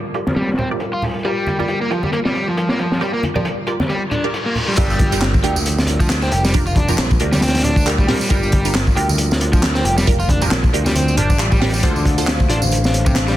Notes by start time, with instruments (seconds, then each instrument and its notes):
Already playing: analog synth pad G3 F4 A#4
0.14 synth stab F4 G4 A#4 D5, closed hi-hat
0.27 snare, high conga
0.36 overdriven electric guitar G3, snare, closed hi-hat
0.42 snare, closed hi-hat
0.49 snare, closed hi-hat
0.54 snare, closed hi-hat
0.58 overdriven electric guitar C4, closed hi-hat, low conga
0.71 synth stab F4 G4 A#4 D5
0.80 closed hi-hat
0.93 overdriven electric guitar F4
1.02 open hi-hat, low conga
1.25 overdriven electric guitar G3, synth stab F4 G4 A#4 D5, closed hi-hat
1.47 closed hi-hat, high conga
1.59 overdriven electric guitar G3, synth stab F4 G4 A#4 D5, closed hi-hat, high conga
1.68 closed hi-hat
1.81 overdriven electric guitar A#3
1.91 overdriven electric guitar F3, synth stab F4 G4 A#4 D5, closed hi-hat
2.03 overdriven electric guitar G3, high conga
2.13 overdriven electric guitar A#3, closed hi-hat
2.25 overdriven electric guitar G3, snare
2.35 closed hi-hat
2.47 overdriven electric guitar F3
2.57 closed hi-hat
2.69 overdriven electric guitar A#3, snare
2.79 overdriven electric guitar F3, closed hi-hat
2.92 snare
3.01 overdriven electric guitar G3, synth stab F4 G4 A#4 D5, closed hi-hat
3.13 overdriven electric guitar A#3
3.23 closed hi-hat, high conga
3.35 overdriven electric guitar F3, synth stab F4 G4 A#4 D5, high conga, low conga
3.45 closed hi-hat
3.67 synth stab F4 G4 A#4 D5, closed hi-hat
3.80 snare, high conga
3.89 overdriven electric guitar G3, closed hi-hat, reverse cymbal
4.11 overdriven electric guitar D4, closed hi-hat, low conga
4.24 synth stab F4 G4 A#4 D5
4.34 closed hi-hat
4.46 overdriven electric guitar A#3
4.55 open hi-hat, low conga
4.68 overdriven electric guitar G3
4.77 picked electric bass G1, analog synth pad G3 F4 A#4, overdriven electric guitar G3, synth stab D4 F4 G4 A#4, kick, closed hi-hat, crash, tambourine, impact
4.90 tambourine
4.99 kick, closed hi-hat, high conga
5.12 synth stab D4 F4 G4 A#4, closed hi-hat, tambourine, high conga
5.21 snare, clap, closed hi-hat
5.34 kick, tambourine
5.44 picked electric bass D2, synth stab D4 F4 G4 A#4, overdriven electric guitar G4, closed hi-hat
5.56 tambourine, high conga
5.66 closed hi-hat, tambourine
5.78 snare, tambourine
5.87 closed hi-hat
6.00 overdriven electric guitar F3, kick, tambourine
6.09 snare, clap, closed hi-hat, tambourine
6.22 overdriven electric guitar C4, snare, tambourine
6.32 picked electric bass F1, overdriven electric guitar G4, closed hi-hat
6.45 overdriven electric guitar G3, snare, tambourine
6.54 synth stab D4 F4 G4 A#4, kick, closed hi-hat, tambourine
6.66 overdriven electric guitar F4, tambourine
6.76 overdriven electric guitar D4, kick, closed hi-hat, high conga
6.88 overdriven electric guitar F3, synth stab D4 F4 G4 A#4, tambourine, high conga, low conga
6.98 picked electric bass A#1, snare, clap, closed hi-hat
7.11 kick, tambourine
7.20 picked electric bass D2, synth stab D4 F4 G4 A#4, closed hi-hat
7.32 overdriven electric guitar G3, snare, tambourine, high conga
7.41 overdriven electric guitar C4, snare, closed hi-hat, tambourine
7.48 snare, closed hi-hat
7.55 snare, closed hi-hat, tambourine
7.59 snare, closed hi-hat
7.64 overdriven electric guitar D4, closed hi-hat, low conga
7.76 kick, tambourine
7.86 overdriven electric guitar G3, synth stab D4 F4 G4 A#4, clap, closed hi-hat, tambourine
7.99 overdriven electric guitar G3, kick, tambourine
8.08 overdriven electric guitar G3, synth stab D4 F4 G4 A#4, snare, open hi-hat, low conga
8.21 overdriven electric guitar G3, tambourine
8.30 picked electric bass G1, overdriven electric guitar G3, synth stab D4 F4 G4 A#4, kick, closed hi-hat, tambourine
8.43 tambourine
8.52 kick, closed hi-hat, high conga
8.65 synth stab D4 F4 G4 A#4, closed hi-hat, tambourine, high conga
8.75 snare, clap, closed hi-hat
8.87 kick, tambourine
8.96 picked electric bass D2, synth stab D4 F4 G4 A#4, overdriven electric guitar G4, closed hi-hat
9.09 tambourine, high conga
9.18 closed hi-hat, tambourine
9.31 snare, tambourine
9.41 closed hi-hat
9.53 overdriven electric guitar F3, kick, tambourine
9.62 snare, clap, closed hi-hat, tambourine
9.75 overdriven electric guitar C4, snare, tambourine
9.85 picked electric bass F1, overdriven electric guitar G4, closed hi-hat
9.97 overdriven electric guitar G3, snare, tambourine
10.07 synth stab D4 F4 G4 A#4, kick, closed hi-hat, tambourine
10.20 overdriven electric guitar F4, tambourine
10.29 overdriven electric guitar D4, kick, closed hi-hat, high conga
10.41 overdriven electric guitar F3, synth stab D4 F4 G4 A#4, tambourine, high conga, low conga
10.51 picked electric bass A#1, snare, clap, closed hi-hat
10.64 kick, tambourine
10.73 picked electric bass D2, synth stab D4 F4 G4 A#4, closed hi-hat
10.86 overdriven electric guitar G3, snare, tambourine, high conga
10.95 overdriven electric guitar C4, closed hi-hat, tambourine, high conga
11.08 tambourine
11.17 picked electric bass G1, synth stab D4 F4 G4 D5, overdriven electric guitar D4, closed hi-hat, low conga
11.30 kick, tambourine
11.39 picked electric bass A1, overdriven electric guitar G3, clap, closed hi-hat, tambourine
11.52 overdriven electric guitar G3, kick, tambourine
11.61 overdriven electric guitar G3, synth stab D4 F4 G4 A#4, snare, open hi-hat, low conga
11.74 overdriven electric guitar G3, tambourine
11.83 picked electric bass D2, overdriven electric guitar D3, synth stab D4 F4 A4 C5, analog synth pad D4 C5 F5, kick, closed hi-hat, tambourine
11.96 tambourine
12.06 kick, closed hi-hat, high conga
12.18 synth stab D4 F4 A4 C5, closed hi-hat, tambourine, high conga
12.27 snare, clap, closed hi-hat
12.40 kick, tambourine
12.49 picked electric bass A1, synth stab D4 F4 A4 C5, overdriven electric guitar D4, closed hi-hat
12.62 tambourine, high conga
12.72 closed hi-hat, tambourine
12.84 snare, tambourine
12.94 closed hi-hat
13.06 overdriven electric guitar C3, kick, tambourine
13.15 snare, clap, closed hi-hat, tambourine
13.28 overdriven electric guitar G3, snare, tambourine